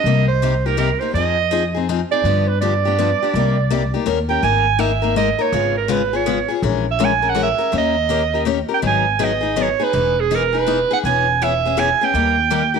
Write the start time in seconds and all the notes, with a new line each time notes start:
Already playing: D#5
0.04 C2 C3 G3 A#3 D#4 G4
0.28 C5
0.42 C3 G3 A#3 D#4 G4
0.66 A#3 D#4 G4 A#4
0.77 C3 G3 A#3 D#4 G4 A#4
1.00 A#3 D#4 G4 C5
1.14 F2 F3 C4 D#4 G#4 D#5
1.51 F3 C4 D#4 G#4
1.75 C4 D#4 G#4
1.89 F3 C4 D#4 G#4
2.12 C4 D#4 G#4 D5
2.24 G2 D3 F3 B3 D4 G4
2.48 B4
2.61 D3 F3 B3 D4 G4 D5
2.85 B3 D4 G4
2.98 D3 F3 B3 D4 G4
3.22 B3 D4 G4
3.34 C2 C3 G3 A#3 D#4 G4
3.70 C3 G3 A#3 D#4 G4
3.94 A#3 D#4 G4
4.06 D#2 D#3 A#3 C#4 G4 A#4
4.29 C#4 G4 A#4 G5
4.43 G#1 G#3 A#3 D#4 A#4 G#5
4.79 G#3 A#3 D#4 A#4 E5
5.02 A#3 D#4 A#4
5.16 G#3 A#3 D#4 A#4 D#5
5.39 A#3 D#4 A#4 C#5
5.52 G#1 C#3 G#3 B3 F4 G#4
5.77 A#4
5.88 C#3 G#3 B3 F4 G#4 B4
6.13 B3 F4 G#4 C#5
6.26 C#3 G#3 B3 F4 G#4
6.48 B3 F4 G#4
6.62 A#1 E3 G#3 C#4 G#4 A#4
6.91 E5
6.99 E3 G#3 C#4 G#4 A#4
7.05 G#5
7.22 C#4 G#4 A#4
7.30 F#5
7.35 E3 G#3 C#4 G#4 A#4
7.43 E5
7.58 C#4 G#4 A#4
7.72 D#2 D#3 A#3 C#4 G4 A#4
7.78 D#5
8.09 D#3 A#3 C#4 G4 A#4
8.34 C#4 G4 A#4
8.45 D#3 A#3 C#4 G4 A#4
8.68 C#4 G4 A#4
8.74 G5
8.82 G#1 D#3 F#3 B3 D#4 G#4
8.87 G#5
9.19 D#3 F#3 B3 D#4 G#4
9.24 D#5
9.41 B3 D#4 G#4
9.56 D#3 F#3 B3 D#4 G#4
9.62 C#5
9.79 B3 D#4 G#4 B4
9.93 E1 E3 B3 D#4 G#4
10.20 G#4
10.31 E3 B3 D#4 G#4
10.35 A#4
10.53 B3 D#4 G#4
10.58 B4
10.67 E3 B3 D#4 G#4
10.91 B3 D#4 G#4 F#5
11.04 E1 E3 B3 C#4 G#4 G#5
11.42 E3 B3 C#4 G#4 E5
11.65 B3 C#4 G#4
11.77 E3 B3 C#4 G#4 G#5
12.01 B3 C#4 G#4 G5
12.14 D#2 D#3 G3 A#3 D#4 G4
12.50 D#3 G3 A#3 D#4 G4
12.74 A#3 D#4 G4